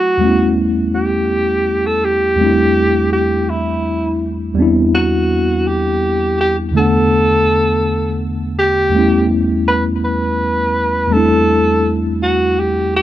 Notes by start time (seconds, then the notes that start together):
Already playing: F#3 A3 C4 E4 F#4
0.18 E2 G3 A3
0.23 B3 C#4 E4
0.95 G4
1.86 A4
2.04 G4
2.36 E2 G3 A3
2.41 C4 D4 E4
3.13 G4
3.50 E4
4.54 E2 G3 B3
4.59 C4 D4 E4
4.95 F#4
5.68 G4
6.41 G4
6.71 E2 D3 A3
6.76 B3 D4 A4 F#5
8.59 G4
8.90 E2 G3 A3
8.95 B3 C#4 E4
9.68 B4
10.05 B4
11.08 E2 G3 A3
11.13 C4 D4 E4 A4
12.23 F#4
12.60 G4
12.96 G4